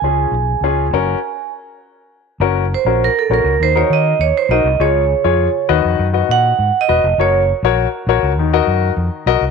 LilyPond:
<<
  \new Staff \with { instrumentName = "Vibraphone" } { \time 4/4 \key fis \major \tempo 4 = 101 gis''2~ gis''8 r4. | r8 bis'8 ais'16 a'16 ais'8 bis'16 cis''16 dis''8 cis''16 bis'16 dis''8 | cis''4. r4 fis''8~ \tuplet 3/2 { fis''8 dis''4 } | cis''8 r2. r8 | }
  \new Staff \with { instrumentName = "Grand piano" } { \time 4/4 \key fis \major <cis' eis' gis'>8 r8 <cis' eis' gis'>8 <cis' fis' ais'>8 r2 | <cis' fis' ais'>8 r16 <cis' fis' ais'>8 r16 <cis' fis' ais'>8 r16 <dis' fis' ais'>8. r8 <dis' fis' ais'>16 r16 | <eis' gis' cis''>8 r16 <eis' gis' cis''>8 r16 <fis' b' dis''>8 r16 <fis' b' dis''>8. r8 <fis' b' dis''>16 r16 | <fis' ais' cis''>8 r16 <fis' ais' cis''>8 r16 <fis' ais' cis''>8 r16 <fis' ais' dis''>8. r8 <fis' ais' dis''>16 r16 | }
  \new Staff \with { instrumentName = "Grand piano" } { \clef bass \time 4/4 \key fis \major cis4. r2 r8 | r2 dis4. r8 | cis4. dis4. r4 | r2 dis4. r8 | }
  \new Staff \with { instrumentName = "Fingered electric bass" } { \clef bass \time 4/4 \key fis \major cis,8 b,,8 cis,8 fis,,8 r2 | fis,,8. ais,,8 r16 ais,,16 cis,16 dis,8 dis8 dis,16 r16 b,,16 bis,,16 | cis,8. eis,8 r16 dis,16 eis,16 fis,8 ais,8 gis,16 r16 e,,16 eis,,16 | fis,,8. ais,,8 r16 ais,,16 cis,16 dis,8 fis,8 eis,16 r16 b,,16 bis,,16 | }
>>